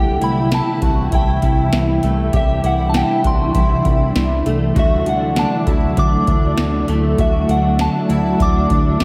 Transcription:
Already playing: analog synth bass C2, ambient pad C3 E3 G3 E4, twelve-string acoustic guitar G4, synth bell G5
0.21 analog synth bass C2, twelve-string acoustic guitar E4, synth bell B5, closed hi-hat
0.51 twelve-string acoustic guitar E4, synth bell A5, snare, closed hi-hat
0.82 analog synth bass C2, twelve-string acoustic guitar F#4, kick, closed hi-hat
1.12 analog synth bass C2, twelve-string acoustic guitar E4, synth bell G5, kick, closed hi-hat
1.42 analog synth bass C2, twelve-string acoustic guitar E4, kick, closed hi-hat
1.73 analog synth bass C2, snare, closed hi-hat
2.03 analog synth bass C2, twelve-string acoustic guitar A3, closed hi-hat
2.33 analog synth bass C2, ambient pad D4, twelve-string acoustic guitar G4, synth bell E5, kick, closed hi-hat
2.63 analog synth bass C2, twelve-string acoustic guitar E4, synth bell F#5, closed hi-hat
2.89 synth bell A5
2.94 twelve-string acoustic guitar E4, synth bell G5, snare, closed hi-hat
3.24 analog synth bass C2, twelve-string acoustic guitar F#4, synth bell C6, kick, closed hi-hat
3.55 analog synth bass C2, twelve-string acoustic guitar E4, kick, closed hi-hat
3.85 analog synth bass C2, twelve-string acoustic guitar E4, kick, closed hi-hat
4.16 analog synth bass C2, snare, closed hi-hat
4.46 analog synth bass C2, twelve-string acoustic guitar A3, closed hi-hat
4.76 analog synth bass D2, clean electric guitar D3 A3 E4 F#4 A4, ambient pad D3 F#3 A3 E4, twelve-string acoustic guitar F#4, synth bell E5, kick, closed hi-hat
5.06 analog synth bass D2, twelve-string acoustic guitar D4, synth bell F#5, closed hi-hat
5.36 twelve-string acoustic guitar D4, synth bell A5, snare, closed hi-hat
5.66 analog synth bass D2, twelve-string acoustic guitar E4, clean electric guitar E4 F#4 A4, kick, closed hi-hat
5.96 analog synth bass D2, clean electric guitar A3 E4 F#4 A4, twelve-string acoustic guitar D4, synth bell D6, kick, closed hi-hat
6.27 analog synth bass D2, twelve-string acoustic guitar D4, kick, closed hi-hat
6.57 analog synth bass D2, clean electric guitar A3 E4 F#4 A4, snare, closed hi-hat
6.88 analog synth bass D2, twelve-string acoustic guitar A3, closed hi-hat
7.18 analog synth bass D2, clean electric guitar D3 A3 E4 F#4 A4, twelve-string acoustic guitar F#4, ambient pad F#4, synth bell E5, kick, closed hi-hat
7.49 analog synth bass D2, twelve-string acoustic guitar D4, synth bell F#5, closed hi-hat
7.79 twelve-string acoustic guitar D4, synth bell A5, snare, closed hi-hat
8.09 analog synth bass D2, twelve-string acoustic guitar E4, clean electric guitar E4 F#4 A4, closed hi-hat
8.39 analog synth bass D2, clean electric guitar A3 E4 F#4 A4, twelve-string acoustic guitar D4, synth bell D6, kick, closed hi-hat
8.70 analog synth bass D2, twelve-string acoustic guitar D4, kick, closed hi-hat
8.99 analog synth bass D2, clean electric guitar A3 E4, snare, closed hi-hat

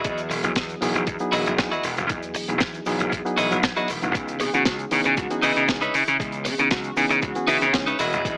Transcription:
Already playing: clean electric guitar E4 F#4 G#4 D#5
0.04 slap bass E2, reed electric piano F#3 B3 E4 G#4 D#5, kick, closed hi-hat, shaker
0.18 closed hi-hat, shaker
0.30 slap bass E1, muted clean electric guitar stroke, open hi-hat, shaker
0.43 slap bass E1, reed electric piano F#3 B3 E4 G#4 D#5, muted clean electric guitar stroke, closed hi-hat, shaker
0.56 slap bass E2, kick, snare, closed hi-hat, shaker
0.69 closed hi-hat, shaker
0.81 slap bass E1, reed electric piano F#3 B3 D#4 E4 G#4, open hi-hat, shaker
0.94 slap bass E1, muted clean electric guitar stroke, closed hi-hat, shaker
1.06 slap bass E2, muted clean electric guitar stroke, kick, closed hi-hat, shaker
1.19 reed electric piano F#3 B3 D#4 E4 G#4, closed hi-hat, shaker
1.32 slap bass E1, clean electric guitar E4 F#4 G#4 D#5, open hi-hat, shaker
1.46 slap bass E1, closed hi-hat, shaker
1.58 slap bass E2, reed electric piano F#3 B3 D#4 E4 G#4, kick, snare, closed hi-hat, shaker
1.71 clean electric guitar E4 F#4 G#4 D#5, closed hi-hat, shaker
1.83 slap bass E1, open hi-hat, shaker
1.97 slap bass E1, muted clean electric guitar stroke, closed hi-hat, shaker
2.09 slap bass E2, reed electric piano F#3 B3 E4 G#4 D#5, kick, closed hi-hat, shaker
2.23 closed hi-hat, shaker
2.34 slap bass E1, muted clean electric guitar stroke, open hi-hat, shaker
2.48 slap bass E1, reed electric piano F#3 B3 D#4 E4 G#4, muted clean electric guitar stroke, closed hi-hat, shaker
2.60 slap bass E2, kick, snare, closed hi-hat, shaker
2.74 closed hi-hat, shaker
2.86 slap bass E1, reed electric piano F#3 B3 D#4 E4 G#4, open hi-hat, shaker
2.99 slap bass E1, muted clean electric guitar stroke, closed hi-hat, shaker
3.12 slap bass E2, muted clean electric guitar stroke, kick, closed hi-hat, shaker
3.25 reed electric piano F#3 B3 D#4 E4 G#4, closed hi-hat, shaker
3.37 slap bass E1, clean electric guitar E4 F#4 G#4 D#5, open hi-hat, shaker
3.51 slap bass E1, reed electric piano F#3 B3 D#4 E4 F#4, closed hi-hat, shaker
3.63 slap bass E2, kick, snare, closed hi-hat, shaker
3.76 reed electric piano F#3 B3 D#4 E4 F#4, clean electric guitar E4 F#4 G#4 D#5, closed hi-hat, shaker
3.88 slap bass E1, open hi-hat, shaker
4.02 slap bass E1, reed electric piano F#3 B3 D#4 E4 F#4, muted clean electric guitar stroke, closed hi-hat, shaker
4.14 slap bass C#2, reed electric piano E3 B3 C#4 D#4 G#4, kick, closed hi-hat, shaker
4.28 closed hi-hat, shaker
4.40 slap bass C#3, analog synth lead G#4, muted clean electric guitar stroke, open hi-hat, shaker
4.53 slap bass C#3, reed electric piano E3 B3 C#4 D#4 G#4, analog synth lead F#4, muted clean electric guitar stroke, closed hi-hat, shaker
4.65 slap bass C#2, kick, snare, closed hi-hat, shaker
4.79 closed hi-hat, shaker
4.91 slap bass C#3, reed electric piano E3 B3 C#4 D#4 G#4, open hi-hat, shaker
5.04 slap bass C#3, muted clean electric guitar stroke, closed hi-hat, shaker
5.17 slap bass C#2, analog synth lead F#4, muted clean electric guitar stroke, kick, closed hi-hat, shaker
5.30 reed electric piano E3 B3 C#4 D#4 G#4, closed hi-hat, shaker
5.42 slap bass C#3, clean electric guitar D#4 E4 B4 D#5, open hi-hat, shaker
5.56 slap bass C#3, closed hi-hat, shaker
5.68 slap bass C#2, reed electric piano E3 B3 C#4 D#4 G#4, kick, snare, closed hi-hat, shaker
5.81 clean electric guitar D#4 E4 B4 C#5, closed hi-hat, shaker
5.94 slap bass C#3, analog synth lead E4, open hi-hat, shaker
6.07 slap bass C#3, muted clean electric guitar stroke, closed hi-hat, shaker
6.19 slap bass C#2, reed electric piano E3 B3 C#4 G#4 D#5, kick, closed hi-hat, shaker
6.32 closed hi-hat, shaker
6.45 slap bass C#3, muted clean electric guitar stroke, open hi-hat, shaker
6.58 slap bass C#3, reed electric piano E3 B3 C#4 D#4 G#4, muted clean electric guitar stroke, closed hi-hat, shaker
6.71 slap bass C#2, analog synth lead F#4, kick, snare, closed hi-hat, shaker
6.84 closed hi-hat, shaker
6.96 slap bass C#3, reed electric piano E3 B3 C#4 D#4 G#4, open hi-hat, shaker
7.09 slap bass C#3, muted clean electric guitar stroke, closed hi-hat, shaker
7.22 slap bass C#2, analog synth lead F#4, muted clean electric guitar stroke, kick, closed hi-hat, shaker
7.35 reed electric piano E3 B3 C#4 G#4, closed hi-hat, shaker
7.47 slap bass C#3, clean electric guitar D#4 E4 B4 E5, open hi-hat, shaker
7.61 slap bass C#3, analog synth lead C#4, closed hi-hat, shaker
7.73 slap bass C#2, reed electric piano E3 B3 C#4 D#4 G#4, kick, snare, closed hi-hat, shaker
7.86 clean electric guitar D#4 E4 B4 C#5, closed hi-hat, shaker
7.99 slap bass E1, clean electric guitar E4 F#4 G#4 D#5, open hi-hat, shaker
8.13 slap bass E1, closed hi-hat, shaker
8.25 slap bass E2, reed electric piano F#3 B3 E4 G#4 D#5, kick, closed hi-hat, shaker

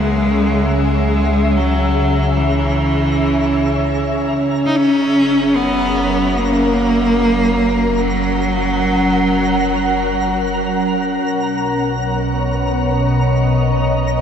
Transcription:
Already playing: analog synth bass C#2, ambient pad C#3 F#3 C#4 G#4 E5 F#5, cello G#3, synth texture A#5
0.78 cello G#3
1.57 cello F#3
2.37 cello E3
4.66 cello D#4
4.75 analog synth bass F#1, ambient pad F#3, cello C#4
5.03 ambient pad A#4
5.56 cello B3
6.38 cello A#3
7.56 ambient pad F#5
7.98 cello F#3
11.20 analog synth bass B1, ambient pad B2, synth texture A#5
11.56 ambient pad C#5
11.60 ambient pad B3
12.71 ambient pad D#5

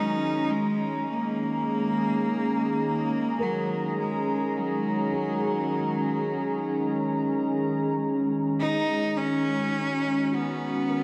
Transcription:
Already playing: ambient pad D#3 F#3 G#3 C#4 A#5, cello D#4, felt piano A#4
0.50 cello G#3, ambient pad G#4
1.09 cello A#3
3.39 cello F#3, felt piano A#4
3.98 cello G#3
4.57 cello F#3
5.13 felt piano G#4
8.48 ambient pad F#4
8.60 cello D#4
9.15 cello C#4, felt piano D#4
10.31 cello B3, felt piano F#4
10.89 felt piano A#4

